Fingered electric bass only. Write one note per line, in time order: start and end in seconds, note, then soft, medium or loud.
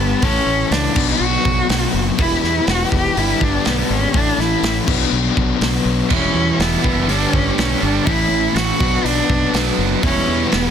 0.00 0.13 G1 medium
0.22 0.38 A1 loud
0.46 0.62 A1 medium
0.71 0.87 C#2 medium
0.96 1.12 B1 loud
1.20 1.36 B1 loud
1.45 1.61 B1 loud
1.69 1.85 B1 medium
1.94 2.10 F#1 medium
2.19 2.35 E1 loud
2.43 2.59 E2 loud
2.67 2.83 E1 medium
2.92 3.08 E1 medium
3.17 3.32 G1 loud
3.41 3.57 G1 medium
3.66 3.82 B1 medium
3.90 4.06 G#1 medium
4.14 4.30 A1 loud
4.38 4.54 A1 loud
4.63 4.79 A1 medium
4.88 5.04 B1 medium
5.12 5.28 B1 loud
5.37 5.53 B1 loud
5.61 5.77 B1 medium
5.85 6.01 B1 medium
6.11 6.26 E1 loud
6.34 6.50 E2 medium
6.59 6.75 E1 medium
6.84 7.09 F#1 medium
7.09 7.25 G1 loud
7.33 7.49 G1 medium
7.58 7.74 B1 medium
7.82 7.98 G1 medium
8.07 8.23 A1 loud
8.31 8.47 A1 medium
8.55 8.71 A1 medium
8.80 8.96 B1 loud
9.04 9.20 B1 medium
9.29 9.45 B1 loud
9.53 9.69 B1 medium
9.78 9.94 F#1 medium
10.03 10.19 E1 loud
10.28 10.44 E2 loud
10.52 10.68 E1 medium